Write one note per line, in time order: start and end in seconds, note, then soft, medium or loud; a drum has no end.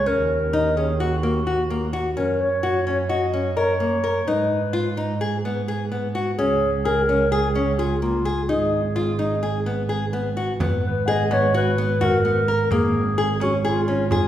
0.06 2.18 D#2 medium
0.06 0.37 C#4 medium
0.06 0.78 A#4 medium
0.53 0.69 D#4 medium
0.76 0.92 C#4 medium
0.76 1.03 G#4 medium
1.00 1.16 F#4 medium
1.00 1.94 F#4 medium
1.23 1.39 A#3 medium
1.47 1.62 F#4 medium
1.70 1.86 A#3 medium
1.93 2.09 F#4 medium
2.16 4.29 F#2 medium
2.16 2.48 C#4 medium
2.16 2.42 A#4 medium
2.41 2.86 C#5 medium
2.63 2.79 F#4 medium
2.87 3.02 C#4 medium
2.87 2.97 C#5 medium
3.09 3.25 F#4 medium
3.09 3.59 D#5 medium
3.33 3.49 C#4 medium
3.57 3.72 A#4 medium
3.57 4.29 C#5 medium
3.80 3.96 A#3 medium
4.04 4.19 A#4 medium
4.27 6.40 G#2 medium
4.27 4.59 D#4 medium
4.27 5.21 B4 medium
4.73 4.89 F4 medium
4.97 5.13 D#4 medium
5.21 5.37 G#4 medium
5.45 5.60 B3 medium
5.68 5.84 G#4 medium
5.92 6.07 B3 medium
6.15 6.30 F#4 medium
6.38 8.51 C#2 medium
6.38 6.70 C#4 medium
6.38 6.87 G#4 medium
6.85 7.01 G#4 medium
6.85 7.31 A#4 medium
7.09 7.24 C#4 medium
7.32 7.80 G#4 medium
7.32 7.47 G#4 medium
7.55 7.71 C#4 medium
7.79 8.02 F4 medium
7.79 7.95 G#4 medium
8.02 8.18 A#3 medium
8.02 8.51 F4 medium
8.25 8.41 G#4 medium
8.49 10.56 G#1 medium
8.49 8.80 D#4 medium
8.49 10.13 G#4 medium
8.96 9.11 F4 medium
9.19 9.35 D#4 medium
9.43 9.58 G#4 medium
9.66 9.82 B3 medium
9.89 10.05 G#4 medium
10.13 10.29 B3 medium
10.37 10.52 F#4 medium
10.60 12.71 G#1 medium
10.60 10.91 B3 medium
10.60 frame drum medium
10.84 11.10 B4 medium
10.84 frame drum soft
11.06 11.23 G#4 medium
11.06 11.35 D#5 medium
11.06 11.84 F#5 soft
11.31 11.46 B3 medium
11.31 11.55 C#5 medium
11.31 frame drum soft
11.54 11.70 F#4 medium
11.54 12.05 B4 medium
11.78 11.93 B3 medium
11.78 frame drum soft
12.01 12.16 F#4 medium
12.01 12.73 A#4 medium
12.01 frame drum soft
12.25 12.40 B3 medium
12.25 frame drum soft
12.48 12.63 A#4 medium
12.71 14.28 G#1 medium
12.71 13.02 A#3 medium
12.71 13.41 G#4 medium
12.71 frame drum medium
12.95 frame drum soft
13.18 13.33 G#4 medium
13.40 13.57 C#4 medium
13.40 13.53 F#4 medium
13.40 frame drum soft
13.65 14.08 F4 medium
13.65 13.80 G#4 medium
13.88 14.03 C#4 medium
13.88 frame drum soft
14.10 14.28 F4 medium
14.10 14.27 G#4 medium
14.10 frame drum medium